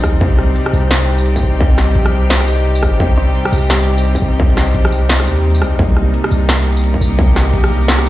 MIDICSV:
0, 0, Header, 1, 5, 480
1, 0, Start_track
1, 0, Key_signature, -3, "minor"
1, 0, Tempo, 348837
1, 289, Time_signature, 4, 2, 24, 8
1, 11135, End_track
2, 0, Start_track
2, 0, Title_t, "Synth drone"
2, 0, Program_c, 0, 95
2, 0, Note_on_c, 0, 63, 83
2, 7969, Note_on_c, 0, 67, 86
2, 7979, Note_off_c, 0, 63, 0
2, 11135, Note_off_c, 0, 67, 0
2, 11135, End_track
3, 0, Start_track
3, 0, Title_t, "String section"
3, 0, Program_c, 1, 48
3, 0, Note_on_c, 1, 48, 77
3, 0, Note_on_c, 1, 55, 70
3, 0, Note_on_c, 1, 60, 70
3, 0, Note_on_c, 1, 63, 86
3, 262, Note_off_c, 1, 63, 0
3, 290, Note_on_c, 1, 67, 85
3, 7913, Note_off_c, 1, 60, 0
3, 7943, Note_off_c, 1, 67, 0
3, 7970, Note_on_c, 1, 58, 72
3, 7972, Note_on_c, 1, 63, 88
3, 11135, Note_off_c, 1, 48, 0
3, 11135, Note_off_c, 1, 55, 0
3, 11135, Note_off_c, 1, 58, 0
3, 11135, Note_off_c, 1, 63, 0
3, 11135, End_track
4, 0, Start_track
4, 0, Title_t, "808-style bass"
4, 0, Program_c, 2, 38
4, 51, Note_on_c, 2, 39, 85
4, 274, Note_off_c, 2, 39, 0
4, 291, Note_on_c, 2, 36, 96
4, 757, Note_off_c, 2, 36, 0
4, 1010, Note_on_c, 2, 36, 94
4, 1957, Note_off_c, 2, 36, 0
4, 1972, Note_on_c, 2, 36, 101
4, 2678, Note_off_c, 2, 36, 0
4, 2689, Note_on_c, 2, 34, 98
4, 2929, Note_on_c, 2, 36, 94
4, 2950, Note_off_c, 2, 34, 0
4, 3888, Note_on_c, 2, 31, 85
4, 3909, Note_off_c, 2, 36, 0
4, 4113, Note_off_c, 2, 31, 0
4, 4129, Note_on_c, 2, 36, 100
4, 4596, Note_off_c, 2, 36, 0
4, 4851, Note_on_c, 2, 36, 93
4, 5797, Note_off_c, 2, 36, 0
4, 5807, Note_on_c, 2, 36, 100
4, 6515, Note_off_c, 2, 36, 0
4, 6529, Note_on_c, 2, 34, 100
4, 6768, Note_on_c, 2, 36, 94
4, 6788, Note_off_c, 2, 34, 0
4, 7250, Note_on_c, 2, 39, 97
4, 7271, Note_off_c, 2, 36, 0
4, 7728, Note_on_c, 2, 36, 97
4, 7749, Note_off_c, 2, 39, 0
4, 7953, Note_off_c, 2, 36, 0
4, 7969, Note_on_c, 2, 36, 103
4, 8437, Note_off_c, 2, 36, 0
4, 8689, Note_on_c, 2, 36, 93
4, 9636, Note_off_c, 2, 36, 0
4, 9648, Note_on_c, 2, 36, 100
4, 10356, Note_off_c, 2, 36, 0
4, 10369, Note_on_c, 2, 34, 97
4, 10610, Note_on_c, 2, 36, 94
4, 10631, Note_off_c, 2, 34, 0
4, 11135, Note_off_c, 2, 36, 0
4, 11135, End_track
5, 0, Start_track
5, 0, Title_t, "Drums"
5, 49, Note_on_c, 9, 37, 73
5, 49, Note_on_c, 9, 42, 36
5, 49, Note_on_c, 9, 54, 36
5, 50, Note_on_c, 9, 36, 63
5, 187, Note_off_c, 9, 37, 0
5, 187, Note_off_c, 9, 42, 0
5, 187, Note_off_c, 9, 54, 0
5, 188, Note_off_c, 9, 36, 0
5, 290, Note_on_c, 9, 42, 74
5, 291, Note_on_c, 9, 36, 117
5, 427, Note_off_c, 9, 42, 0
5, 428, Note_off_c, 9, 36, 0
5, 530, Note_on_c, 9, 37, 50
5, 667, Note_off_c, 9, 37, 0
5, 769, Note_on_c, 9, 42, 62
5, 907, Note_off_c, 9, 42, 0
5, 910, Note_on_c, 9, 37, 75
5, 1011, Note_on_c, 9, 54, 37
5, 1048, Note_off_c, 9, 37, 0
5, 1148, Note_off_c, 9, 54, 0
5, 1248, Note_on_c, 9, 38, 119
5, 1248, Note_on_c, 9, 42, 73
5, 1386, Note_off_c, 9, 38, 0
5, 1386, Note_off_c, 9, 42, 0
5, 1629, Note_on_c, 9, 54, 63
5, 1730, Note_on_c, 9, 42, 64
5, 1766, Note_off_c, 9, 54, 0
5, 1867, Note_off_c, 9, 42, 0
5, 1870, Note_on_c, 9, 54, 67
5, 1871, Note_on_c, 9, 36, 64
5, 2007, Note_off_c, 9, 54, 0
5, 2008, Note_off_c, 9, 36, 0
5, 2207, Note_on_c, 9, 42, 75
5, 2209, Note_on_c, 9, 36, 118
5, 2345, Note_off_c, 9, 42, 0
5, 2346, Note_off_c, 9, 36, 0
5, 2447, Note_on_c, 9, 37, 51
5, 2447, Note_on_c, 9, 38, 60
5, 2585, Note_off_c, 9, 37, 0
5, 2585, Note_off_c, 9, 38, 0
5, 2686, Note_on_c, 9, 42, 64
5, 2824, Note_off_c, 9, 42, 0
5, 2830, Note_on_c, 9, 37, 79
5, 2967, Note_off_c, 9, 37, 0
5, 3168, Note_on_c, 9, 38, 113
5, 3168, Note_on_c, 9, 42, 76
5, 3305, Note_off_c, 9, 38, 0
5, 3305, Note_off_c, 9, 42, 0
5, 3309, Note_on_c, 9, 37, 59
5, 3408, Note_on_c, 9, 54, 38
5, 3447, Note_off_c, 9, 37, 0
5, 3545, Note_off_c, 9, 54, 0
5, 3647, Note_on_c, 9, 42, 64
5, 3785, Note_off_c, 9, 42, 0
5, 3789, Note_on_c, 9, 54, 66
5, 3888, Note_off_c, 9, 54, 0
5, 3888, Note_on_c, 9, 37, 78
5, 3888, Note_on_c, 9, 54, 39
5, 3889, Note_on_c, 9, 36, 60
5, 4026, Note_off_c, 9, 37, 0
5, 4026, Note_off_c, 9, 54, 0
5, 4027, Note_off_c, 9, 36, 0
5, 4127, Note_on_c, 9, 42, 78
5, 4129, Note_on_c, 9, 36, 118
5, 4265, Note_off_c, 9, 42, 0
5, 4267, Note_off_c, 9, 36, 0
5, 4369, Note_on_c, 9, 37, 54
5, 4507, Note_off_c, 9, 37, 0
5, 4611, Note_on_c, 9, 42, 64
5, 4749, Note_off_c, 9, 42, 0
5, 4752, Note_on_c, 9, 37, 84
5, 4851, Note_on_c, 9, 54, 36
5, 4890, Note_off_c, 9, 37, 0
5, 4897, Note_off_c, 9, 54, 0
5, 4897, Note_on_c, 9, 54, 30
5, 4931, Note_off_c, 9, 54, 0
5, 4931, Note_on_c, 9, 54, 25
5, 4993, Note_off_c, 9, 54, 0
5, 4993, Note_on_c, 9, 54, 19
5, 5010, Note_off_c, 9, 54, 0
5, 5010, Note_on_c, 9, 54, 16
5, 5059, Note_off_c, 9, 54, 0
5, 5059, Note_on_c, 9, 54, 13
5, 5090, Note_on_c, 9, 38, 112
5, 5090, Note_on_c, 9, 42, 78
5, 5197, Note_off_c, 9, 54, 0
5, 5227, Note_off_c, 9, 38, 0
5, 5227, Note_off_c, 9, 42, 0
5, 5474, Note_on_c, 9, 54, 69
5, 5571, Note_on_c, 9, 42, 66
5, 5612, Note_off_c, 9, 54, 0
5, 5709, Note_off_c, 9, 42, 0
5, 5712, Note_on_c, 9, 36, 59
5, 5715, Note_on_c, 9, 54, 68
5, 5849, Note_off_c, 9, 36, 0
5, 5853, Note_off_c, 9, 54, 0
5, 6050, Note_on_c, 9, 36, 117
5, 6050, Note_on_c, 9, 42, 78
5, 6187, Note_off_c, 9, 36, 0
5, 6188, Note_off_c, 9, 42, 0
5, 6193, Note_on_c, 9, 42, 36
5, 6289, Note_on_c, 9, 37, 56
5, 6289, Note_on_c, 9, 38, 61
5, 6330, Note_off_c, 9, 42, 0
5, 6427, Note_off_c, 9, 37, 0
5, 6427, Note_off_c, 9, 38, 0
5, 6530, Note_on_c, 9, 42, 67
5, 6668, Note_off_c, 9, 42, 0
5, 6672, Note_on_c, 9, 37, 85
5, 6771, Note_on_c, 9, 54, 37
5, 6810, Note_off_c, 9, 37, 0
5, 6909, Note_off_c, 9, 54, 0
5, 7010, Note_on_c, 9, 38, 115
5, 7010, Note_on_c, 9, 42, 77
5, 7147, Note_off_c, 9, 38, 0
5, 7147, Note_off_c, 9, 42, 0
5, 7151, Note_on_c, 9, 37, 64
5, 7252, Note_on_c, 9, 54, 37
5, 7289, Note_off_c, 9, 37, 0
5, 7389, Note_off_c, 9, 54, 0
5, 7490, Note_on_c, 9, 42, 31
5, 7571, Note_off_c, 9, 42, 0
5, 7571, Note_on_c, 9, 42, 42
5, 7631, Note_on_c, 9, 54, 67
5, 7649, Note_off_c, 9, 42, 0
5, 7649, Note_on_c, 9, 42, 53
5, 7729, Note_off_c, 9, 54, 0
5, 7729, Note_on_c, 9, 37, 82
5, 7729, Note_on_c, 9, 54, 39
5, 7787, Note_off_c, 9, 42, 0
5, 7866, Note_off_c, 9, 37, 0
5, 7866, Note_off_c, 9, 54, 0
5, 7967, Note_on_c, 9, 42, 81
5, 7969, Note_on_c, 9, 36, 117
5, 8105, Note_off_c, 9, 42, 0
5, 8106, Note_off_c, 9, 36, 0
5, 8209, Note_on_c, 9, 37, 54
5, 8347, Note_off_c, 9, 37, 0
5, 8449, Note_on_c, 9, 42, 68
5, 8586, Note_off_c, 9, 42, 0
5, 8588, Note_on_c, 9, 37, 82
5, 8686, Note_on_c, 9, 54, 37
5, 8726, Note_off_c, 9, 37, 0
5, 8823, Note_off_c, 9, 54, 0
5, 8927, Note_on_c, 9, 38, 120
5, 8927, Note_on_c, 9, 42, 83
5, 9065, Note_off_c, 9, 38, 0
5, 9065, Note_off_c, 9, 42, 0
5, 9310, Note_on_c, 9, 54, 65
5, 9408, Note_on_c, 9, 42, 69
5, 9448, Note_off_c, 9, 54, 0
5, 9546, Note_off_c, 9, 42, 0
5, 9551, Note_on_c, 9, 36, 65
5, 9649, Note_on_c, 9, 54, 68
5, 9689, Note_off_c, 9, 36, 0
5, 9786, Note_off_c, 9, 54, 0
5, 9889, Note_on_c, 9, 36, 123
5, 9889, Note_on_c, 9, 42, 81
5, 10027, Note_off_c, 9, 36, 0
5, 10027, Note_off_c, 9, 42, 0
5, 10130, Note_on_c, 9, 37, 52
5, 10130, Note_on_c, 9, 38, 63
5, 10267, Note_off_c, 9, 37, 0
5, 10267, Note_off_c, 9, 38, 0
5, 10368, Note_on_c, 9, 42, 72
5, 10506, Note_off_c, 9, 42, 0
5, 10509, Note_on_c, 9, 37, 80
5, 10647, Note_off_c, 9, 37, 0
5, 10847, Note_on_c, 9, 38, 120
5, 10847, Note_on_c, 9, 42, 82
5, 10985, Note_off_c, 9, 38, 0
5, 10985, Note_off_c, 9, 42, 0
5, 10988, Note_on_c, 9, 37, 59
5, 11089, Note_on_c, 9, 54, 36
5, 11126, Note_off_c, 9, 37, 0
5, 11135, Note_off_c, 9, 54, 0
5, 11135, End_track
0, 0, End_of_file